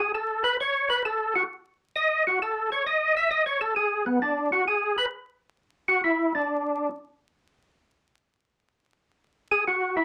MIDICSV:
0, 0, Header, 1, 2, 480
1, 0, Start_track
1, 0, Key_signature, 4, "major"
1, 0, Tempo, 453858
1, 120, Time_signature, 4, 2, 24, 8
1, 10624, End_track
2, 0, Start_track
2, 0, Title_t, "Tonewheel organ"
2, 0, Program_c, 0, 16
2, 0, Note_on_c, 0, 68, 80
2, 128, Note_off_c, 0, 68, 0
2, 153, Note_on_c, 0, 69, 67
2, 455, Note_off_c, 0, 69, 0
2, 465, Note_on_c, 0, 71, 96
2, 604, Note_off_c, 0, 71, 0
2, 640, Note_on_c, 0, 73, 95
2, 939, Note_off_c, 0, 73, 0
2, 950, Note_on_c, 0, 71, 92
2, 1086, Note_off_c, 0, 71, 0
2, 1114, Note_on_c, 0, 69, 80
2, 1415, Note_off_c, 0, 69, 0
2, 1433, Note_on_c, 0, 66, 91
2, 1516, Note_off_c, 0, 66, 0
2, 2069, Note_on_c, 0, 75, 85
2, 2372, Note_off_c, 0, 75, 0
2, 2401, Note_on_c, 0, 66, 75
2, 2531, Note_off_c, 0, 66, 0
2, 2562, Note_on_c, 0, 69, 71
2, 2858, Note_off_c, 0, 69, 0
2, 2877, Note_on_c, 0, 73, 91
2, 3008, Note_off_c, 0, 73, 0
2, 3029, Note_on_c, 0, 75, 75
2, 3331, Note_off_c, 0, 75, 0
2, 3348, Note_on_c, 0, 76, 122
2, 3483, Note_off_c, 0, 76, 0
2, 3497, Note_on_c, 0, 75, 86
2, 3642, Note_off_c, 0, 75, 0
2, 3659, Note_on_c, 0, 73, 83
2, 3803, Note_off_c, 0, 73, 0
2, 3816, Note_on_c, 0, 69, 92
2, 3961, Note_off_c, 0, 69, 0
2, 3978, Note_on_c, 0, 68, 77
2, 4285, Note_off_c, 0, 68, 0
2, 4296, Note_on_c, 0, 59, 70
2, 4437, Note_off_c, 0, 59, 0
2, 4464, Note_on_c, 0, 62, 83
2, 4768, Note_off_c, 0, 62, 0
2, 4783, Note_on_c, 0, 66, 88
2, 4920, Note_off_c, 0, 66, 0
2, 4945, Note_on_c, 0, 68, 73
2, 5249, Note_off_c, 0, 68, 0
2, 5263, Note_on_c, 0, 71, 99
2, 5348, Note_off_c, 0, 71, 0
2, 6222, Note_on_c, 0, 66, 82
2, 6359, Note_off_c, 0, 66, 0
2, 6388, Note_on_c, 0, 64, 73
2, 6690, Note_off_c, 0, 64, 0
2, 6715, Note_on_c, 0, 62, 77
2, 7288, Note_off_c, 0, 62, 0
2, 10063, Note_on_c, 0, 68, 92
2, 10201, Note_off_c, 0, 68, 0
2, 10232, Note_on_c, 0, 66, 67
2, 10534, Note_off_c, 0, 66, 0
2, 10541, Note_on_c, 0, 64, 80
2, 10624, Note_off_c, 0, 64, 0
2, 10624, End_track
0, 0, End_of_file